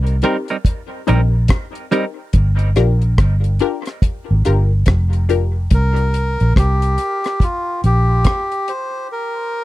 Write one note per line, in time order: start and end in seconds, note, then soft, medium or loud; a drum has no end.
0.00 0.21 C2 medium
0.07 closed hi-hat medium
0.22 0.35 G3 medium
0.22 0.49 C4 medium
0.22 0.36 C4 medium
0.22 0.49 D#4 medium
0.22 0.36 D#4 medium
0.22 0.49 G4 medium
0.22 0.50 A#4 loud
0.22 0.36 A#4 medium
0.22 closed hi-hat medium
0.48 0.56 G3 soft
0.48 0.56 C4 soft
0.48 0.56 D#4 soft
0.48 0.56 A#4 soft
0.48 closed hi-hat soft
0.65 kick loud
0.65 closed hi-hat medium
1.07 1.49 A#1 medium
1.07 1.20 G3 medium
1.07 1.34 C4 medium
1.07 1.20 C4 medium
1.07 1.33 D#4 medium
1.07 1.20 D#4 medium
1.07 1.34 G4 medium
1.07 1.34 A#4 medium
1.07 1.20 A#4 medium
1.07 closed hi-hat medium
1.48 kick loud
1.48 cross-stick loud
1.48 closed hi-hat medium
1.75 closed hi-hat soft
1.91 2.04 G3 medium
1.91 2.18 C4 medium
1.91 2.04 C4 medium
1.91 2.18 D#4 medium
1.91 2.04 D#4 medium
1.91 2.18 G4 medium
1.91 2.19 A#4 loud
1.91 2.04 A#4 medium
1.91 closed hi-hat medium
2.33 2.74 G1 medium
2.33 kick medium
2.33 closed hi-hat medium
2.59 closed hi-hat soft
2.76 3.17 A#1 medium
2.76 3.02 D4 medium
2.76 3.03 F4 medium
2.76 3.03 G4 medium
2.76 3.03 A#4 loud
2.76 cross-stick medium
2.76 closed hi-hat medium
3.02 closed hi-hat soft
3.18 3.59 G1 medium
3.18 kick loud
3.18 cross-stick loud
3.18 closed hi-hat loud
3.44 closed hi-hat medium
3.59 3.87 D4 loud
3.59 3.87 F4 medium
3.59 3.87 G4 medium
3.59 3.88 A#4 loud
3.59 closed hi-hat medium
3.86 cross-stick medium
3.86 closed hi-hat medium
4.02 kick loud
4.02 closed hi-hat medium
4.31 4.45 G#1 medium
4.45 4.86 G1 medium
4.45 4.71 D4 medium
4.45 4.72 F4 medium
4.45 4.72 G4 medium
4.45 4.72 A#4 loud
4.45 closed hi-hat medium
4.86 5.68 F1 loud
4.86 kick loud
4.86 cross-stick loud
4.86 closed hi-hat medium
5.13 closed hi-hat soft
5.29 5.56 D4 medium
5.29 5.56 F4 medium
5.29 5.56 G4 medium
5.29 5.56 A#4 medium
5.29 closed hi-hat medium
5.70 6.37 C2 medium
5.70 6.53 A#4 loud
5.70 kick loud
5.70 closed hi-hat medium
5.96 closed hi-hat soft
6.14 closed hi-hat medium
6.40 6.56 A#1 medium
6.40 closed hi-hat soft
6.56 6.97 C2 medium
6.56 7.44 G4 loud
6.56 kick loud
6.56 cross-stick loud
6.56 closed hi-hat loud
6.82 closed hi-hat medium
6.98 closed hi-hat medium
7.24 cross-stick medium
7.24 closed hi-hat soft
7.40 7.81 F4 medium
7.40 kick loud
7.40 closed hi-hat medium
7.84 8.24 A#1 medium
7.84 8.71 G4 loud
7.84 closed hi-hat medium
8.25 kick loud
8.25 cross-stick loud
8.25 closed hi-hat medium
8.52 closed hi-hat soft
8.68 9.08 C5 medium
8.68 closed hi-hat medium
9.12 9.64 A#4 medium